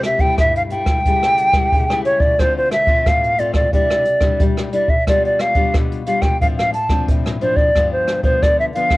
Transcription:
Already playing: C3
0.03 E5, cross-stick, closed hi-hat
0.19 G3 A3 E4 G5, kick, closed hi-hat
0.38 G2 E5, kick, cross-stick, closed hi-hat
0.55 F5, closed hi-hat
0.70 G3 A3 E4 G5, closed hi-hat
0.86 kick, cross-stick, closed hi-hat
1.05 C#3 G3 A3 E4, kick, closed hi-hat
1.23 cross-stick, closed hi-hat
1.37 closed hi-hat
1.53 G3 A3 E4, kick, cross-stick, closed hi-hat
1.72 C#3, kick, closed hi-hat
1.90 G3 A3 E4, cross-stick
2.05 C#5, closed hi-hat
2.20 D5, kick
2.39 D3 A3 C4 F4 C5, kick, cross-stick, closed hi-hat
2.58 C5
2.71 E5, cross-stick, closed hi-hat
2.87 A3 C4 F4, kick, closed hi-hat
3.06 A2 F5, kick, cross-stick, closed hi-hat
3.24 closed hi-hat
3.38 A3 C4 F4 D5, closed hi-hat
3.54 D5, kick, cross-stick, closed hi-hat
3.73 C3 G3 D4 E4 D5, kick, closed hi-hat
3.91 cross-stick
4.05 closed hi-hat
4.21 G3 D4 E4, kick, cross-stick, closed hi-hat
4.40 G3, kick, closed hi-hat
4.57 cross-stick
4.72 G3 D4 E4 D5, closed hi-hat
4.88 E5, kick
5.07 B2 G3 D4 F4 D5, kick, cross-stick, closed hi-hat
5.25 D5, closed hi-hat
5.39 F5, cross-stick, closed hi-hat
5.55 G3 D4 F4, kick, closed hi-hat
5.74 B2, kick, cross-stick, closed hi-hat
5.92 closed hi-hat
6.06 G3 D4 F4 F5, closed hi-hat
6.22 G5, kick, cross-stick, closed hi-hat
6.41 A2 F3 C4 D4 F5, kick, closed hi-hat
6.58 F5, cross-stick, closed hi-hat
6.74 A5, closed hi-hat
6.89 F3 C4 D4, kick, cross-stick, closed hi-hat
7.08 A2, kick, closed hi-hat
7.26 cross-stick
7.41 F3 C4 D4 C5, closed hi-hat
7.56 D5, kick
7.75 G2 F3 B3 D4, kick, cross-stick, closed hi-hat
7.93 C5
8.08 cross-stick, closed hi-hat
8.23 F3 B3 D4 C5, kick, closed hi-hat
8.42 D3 D5, kick, cross-stick, closed hi-hat
8.60 E5, closed hi-hat
8.74 F3 B3 D4 F5, closed hi-hat
8.90 kick, cross-stick, closed hi-hat

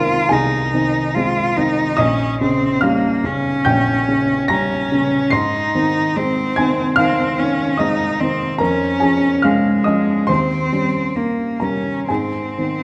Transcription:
Already playing: C2 D#3 G#3 C4 F4 A#4 C5 A#5 C6
0.29 C2 D#4 G#4 G#5
0.74 D#3 C4
1.15 G#3 C4 F4
1.57 D#3 C4 D#4
1.97 A#1 C#4 D#5 D#6
2.41 C#3 C4 C#4
2.81 G3 A#3 C#4 F5 F6
3.24 C#3 C#4
3.65 A#1 G5 G6
4.08 C#3 C#4
4.48 G3 C#4 A#5 A#6
4.92 C#3 C#4
5.30 G#2 D#4 C6 C7
5.75 D#3 C4
6.16 G#3 C4
6.56 D#3 C4 G#5 G#6
6.96 D#3 C4 F5 F6
7.39 D#3 C4 C#4
7.77 G#3 C4 D#4 D#5 D#6
8.20 D#3 C4
8.58 F2 C#4 A#4 A#5
9.00 F3 C#4 G#4 G#5
9.42 G#3 C#4 F5 F6
9.84 F3 C#4 D#5 D#6
10.27 D#2 C4 C5 C6
10.72 G3 C#4
11.16 A#3 C#4
11.60 G3 C#4 A#4 A#5
12.09 G#2 C4 G#4 G#5
12.58 D#3 C4

